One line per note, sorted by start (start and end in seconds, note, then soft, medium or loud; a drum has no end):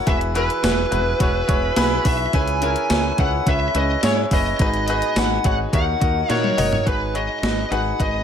0.06 0.48 E1 loud
0.06 0.88 E3 medium
0.06 0.32 E4 medium
0.06 0.33 F#4 medium
0.06 0.33 G#4 medium
0.06 0.33 B4 loud
0.06 0.15 E5 loud
0.06 kick loud
0.06 closed hi-hat medium
0.21 closed hi-hat soft
0.35 0.61 E4 loud
0.35 0.61 F#4 medium
0.35 0.61 G#4 medium
0.35 0.61 B4 loud
0.35 2.11 B4 medium
0.35 closed hi-hat medium
0.50 closed hi-hat medium
0.63 0.84 E1 loud
0.63 0.89 E4 medium
0.63 0.89 F#4 medium
0.63 0.89 G#4 medium
0.63 0.89 B4 medium
0.63 snare loud
0.63 closed hi-hat medium
0.63 tambourine medium
0.91 1.12 E1 loud
0.91 1.17 E4 medium
0.91 1.17 F#4 medium
0.91 1.17 G#4 medium
0.91 1.18 B4 medium
0.91 closed hi-hat medium
1.20 1.41 E1 loud
1.20 1.46 E4 medium
1.20 1.46 F#4 medium
1.20 1.46 G#4 medium
1.20 1.46 C#5 loud
1.20 kick loud
1.20 closed hi-hat loud
1.47 1.69 E1 loud
1.47 1.74 E4 medium
1.47 1.74 F#4 medium
1.47 1.74 G#4 medium
1.47 1.75 C#5 loud
1.47 kick loud
1.47 closed hi-hat medium
1.76 1.97 B1 medium
1.76 2.02 E4 loud
1.76 2.03 F#4 loud
1.76 2.03 G#4 loud
1.76 2.03 B4 loud
1.76 snare loud
1.76 closed hi-hat medium
1.76 tambourine medium
2.04 2.26 B1 medium
2.04 2.30 E4 medium
2.04 2.31 F#4 medium
2.04 2.31 G#4 medium
2.04 2.31 B4 medium
2.04 2.35 E5 medium
2.04 kick loud
2.04 open hi-hat medium
2.33 2.74 C#2 loud
2.33 3.15 C#3 medium
2.33 2.59 C#4 loud
2.33 2.59 E4 medium
2.33 2.60 G#4 medium
2.33 2.60 B4 loud
2.33 2.61 G#5 loud
2.33 kick loud
2.33 closed hi-hat medium
2.47 closed hi-hat medium
2.62 2.88 C#4 medium
2.62 2.88 E4 medium
2.62 2.88 G#4 medium
2.62 2.88 A#4 loud
2.62 3.20 G#5 loud
2.62 closed hi-hat medium
2.76 closed hi-hat medium
2.90 3.10 C#2 loud
2.90 3.16 C#4 medium
2.90 3.16 E4 medium
2.90 3.16 G#4 medium
2.90 3.16 B4 medium
2.90 snare loud
2.90 closed hi-hat medium
2.90 tambourine medium
3.18 3.39 C#2 loud
3.18 3.44 C#4 medium
3.18 3.44 E4 medium
3.18 3.45 G#4 medium
3.18 3.45 B4 medium
3.18 3.48 F#5 medium
3.18 kick loud
3.18 closed hi-hat medium
3.46 3.67 C#2 loud
3.46 3.72 C#4 medium
3.46 3.73 E4 medium
3.46 3.73 G#4 medium
3.46 3.73 B4 medium
3.46 3.77 E5 medium
3.46 kick medium
3.46 closed hi-hat loud
3.74 3.95 C#2 loud
3.74 4.00 C#4 medium
3.74 4.01 E4 medium
3.74 4.01 G#4 medium
3.74 4.01 B4 medium
3.74 4.05 D#5 medium
3.74 closed hi-hat medium
4.03 4.23 G#2 medium
4.03 4.29 C#4 medium
4.03 4.29 E4 medium
4.03 4.29 G#4 medium
4.03 4.29 C#5 loud
4.03 4.13 C#5 medium
4.03 snare loud
4.03 closed hi-hat medium
4.03 tambourine medium
4.31 4.52 F#1 medium
4.31 4.57 C#4 medium
4.31 4.58 E4 medium
4.31 4.58 G#4 medium
4.31 4.58 B4 medium
4.31 5.20 D#5 medium
4.31 kick loud
4.31 open hi-hat medium
4.59 5.00 G#1 medium
4.59 5.41 G#2 medium
4.59 4.86 D#4 loud
4.59 4.86 F#4 medium
4.59 4.86 G#4 medium
4.59 4.86 B4 loud
4.59 kick loud
4.59 closed hi-hat medium
4.74 closed hi-hat soft
4.88 5.14 D#4 medium
4.88 5.14 F#4 medium
4.88 5.15 G#4 medium
4.88 5.15 B4 loud
4.88 closed hi-hat medium
5.02 closed hi-hat medium
5.16 5.36 G#1 loud
5.16 5.42 D#4 medium
5.16 5.42 F#4 medium
5.16 5.43 G#4 medium
5.16 5.43 B4 medium
5.16 5.44 F#5 medium
5.16 snare loud
5.16 closed hi-hat medium
5.16 tambourine medium
5.44 5.65 G#1 loud
5.44 5.70 D#4 medium
5.44 5.70 F#4 medium
5.44 5.71 G#4 medium
5.44 5.71 C#5 medium
5.44 5.54 F#5 medium
5.44 kick loud
5.44 closed hi-hat medium
5.72 5.93 D#2 loud
5.72 6.54 D#3 medium
5.72 5.99 D#4 medium
5.72 5.99 F#4 medium
5.72 5.99 A#4 medium
5.72 5.99 C#5 medium
5.72 6.32 F#5 medium
5.72 kick loud
5.72 closed hi-hat loud
6.00 6.22 D#2 medium
6.00 6.27 D#4 medium
6.00 6.27 F#4 medium
6.00 6.27 A#4 medium
6.00 6.27 D#5 medium
6.00 kick loud
6.00 closed hi-hat medium
6.29 6.50 A#2 medium
6.29 6.55 D#4 medium
6.29 6.55 F#4 medium
6.29 6.55 A#4 medium
6.29 6.56 C#5 loud
6.29 6.57 C#5 medium
6.29 6.55 E5 medium
6.29 snare medium
6.29 closed hi-hat medium
6.44 high tom medium
6.57 6.78 F#1 medium
6.57 6.83 D#4 medium
6.57 6.83 F#4 medium
6.57 6.84 A#4 medium
6.57 6.85 C#5 medium
6.57 6.84 D#5 loud
6.57 mid tom loud
6.57 open hi-hat medium
6.73 floor tom medium
6.86 7.27 G#1 medium
6.86 7.67 G#2 medium
6.86 7.12 D#4 medium
6.86 7.12 F#4 medium
6.86 7.12 G#4 medium
6.86 7.12 B4 medium
6.86 7.16 B4 medium
6.86 kick loud
6.86 closed hi-hat medium
7.14 7.40 D#4 medium
7.14 7.40 F#4 medium
7.14 7.40 G#4 medium
7.14 7.40 C#5 medium
7.14 7.68 D#5 medium
7.14 closed hi-hat medium
7.42 7.63 G#1 medium
7.42 7.68 D#4 medium
7.42 7.69 F#4 medium
7.42 7.69 G#4 medium
7.42 7.69 B4 medium
7.42 snare loud
7.42 closed hi-hat medium
7.71 7.91 G#1 medium
7.71 7.97 D#4 medium
7.71 7.97 F#4 medium
7.71 7.97 G#4 medium
7.71 7.97 B4 loud
7.71 7.98 F#5 medium
7.71 closed hi-hat medium
7.99 8.20 G#1 loud
7.99 8.23 D#4 medium
7.99 8.23 F#4 medium
7.99 8.23 G#4 medium
7.99 8.23 B4 medium
7.99 8.23 D#5 medium
7.99 kick medium
7.99 closed hi-hat medium